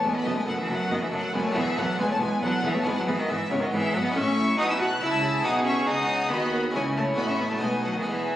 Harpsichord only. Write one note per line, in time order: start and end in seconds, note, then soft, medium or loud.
0.00 0.19 G#3 medium
0.00 0.20 B3 soft
0.00 0.21 E4 medium
0.04 0.24 E2 medium
0.22 1.50 A3 medium
0.22 1.51 B3 medium
0.22 1.51 D#4 medium
0.27 0.46 F#2 medium
0.48 0.67 F#2 medium
0.70 0.89 F#2 medium
0.91 1.10 F#2 medium
1.14 1.32 F#2 medium
1.34 1.54 F#2 medium
1.52 2.80 G#3 medium
1.52 2.80 B3 medium
1.52 2.81 E4 medium
1.56 1.75 E2 medium
1.78 1.97 E2 medium
1.99 2.19 E2 medium
2.22 2.41 E2 medium
2.43 2.62 E2 medium
2.65 2.84 E2 medium
2.82 4.09 G#3 medium
2.82 4.10 B3 medium
2.82 4.11 E4 medium
2.86 3.05 G#2 medium
3.09 3.27 G#2 medium
3.30 3.49 G#2 medium
3.51 3.70 G#2 medium
3.72 3.92 G#2 medium
3.94 4.13 G#2 medium
4.11 5.39 C#4 medium
4.11 5.39 E4 medium
4.11 5.40 A4 medium
4.16 4.55 A2 medium
4.60 4.98 B2 medium
5.03 5.41 C#3 medium
5.41 6.69 B3 medium
5.41 6.69 D#4 medium
5.41 6.70 F#4 medium
5.45 5.84 B2 medium
5.89 6.28 C#3 medium
6.32 6.71 D#3 medium
6.71 7.15 G#3 medium
6.71 7.14 C#4 medium
6.71 7.16 E4 medium
6.75 7.14 C#3 medium
7.14 7.56 A3 medium
7.14 7.59 C#4 medium
7.14 7.60 F#4 soft
7.18 7.58 A2 medium
7.57 8.02 A3 soft
7.57 8.02 B3 soft
7.57 8.04 D#4 soft
7.62 8.02 B2 medium
8.01 8.36 G#3 soft
8.01 8.36 B3 medium
8.01 8.36 E4 soft
8.06 8.36 E2 medium